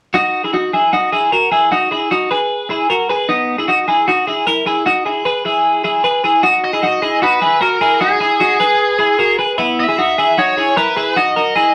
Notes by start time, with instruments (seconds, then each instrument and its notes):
0.14 clean electric guitar D#4 F#4
0.44 clean electric guitar E4 G#4
0.53 clean electric guitar D#4 F#4
0.73 clean electric guitar E4 G#4
0.93 clean electric guitar D#4 F#4
1.12 clean electric guitar E4 G#4
1.32 clean electric guitar F#4 A#4
1.52 clean electric guitar E4 G#4
1.72 clean electric guitar D#4 F#4
1.91 clean electric guitar E4 G#4
2.11 clean electric guitar D#4 F#4
2.31 clean electric guitar G#4 B4
2.70 clean electric guitar E4 G#4
2.90 clean electric guitar F#4 A#4
3.09 clean electric guitar G#4 B4
3.29 clean electric guitar B3 D#4
3.58 clean electric guitar E4 G#4
3.68 clean electric guitar D#4 F#4
3.88 clean electric guitar E4 G#4
4.08 clean electric guitar D#4 F#4
4.27 clean electric guitar E4 G#4
4.47 clean electric guitar E4 A#4
4.66 clean electric guitar E4 G#4
4.86 clean electric guitar D#4 F#4
5.06 clean electric guitar E4 G#4
5.25 clean electric guitar G#4 B4
5.45 clean electric guitar E4 G#4
5.84 clean electric guitar E4 G#4
6.04 clean electric guitar G#4 B4
6.24 clean electric guitar E4 G#4
6.43 clean electric guitar D#4 F#4
6.64 lead electric guitar D#5
6.73 clean electric guitar E4 G#4
6.83 clean electric guitar D#4 F#4
7.02 clean electric guitar E4 G#4
7.22 clean electric guitar D#4 F#4, lead electric guitar B4
7.42 clean electric guitar E4 G#4
7.61 clean electric guitar F#4 A#4, lead electric guitar A#4
7.81 clean electric guitar E4 G#4
8.01 clean electric guitar D#4 F#4, lead electric guitar G#4
8.20 clean electric guitar E4 G#4
8.40 clean electric guitar D#4 F#4
8.60 clean electric guitar G#4 B4
8.99 clean electric guitar E4 G#4
9.19 clean electric guitar F#4 A#4
9.39 clean electric guitar G#4 B4
9.58 clean electric guitar B3 E4
9.80 lead electric guitar E5
9.88 clean electric guitar E4 G#4
9.98 clean electric guitar D#4 F#4
10.18 clean electric guitar E4 G#4
10.38 clean electric guitar D#4 F#4, lead electric guitar C#5
10.57 clean electric guitar E4 G#4
10.77 clean electric guitar E4 A#4, lead electric guitar B4
10.97 clean electric guitar E4 G#4
11.16 clean electric guitar D#4 F#4, lead electric guitar D#5
11.36 clean electric guitar F#4 A#4
11.56 clean electric guitar E4 G#4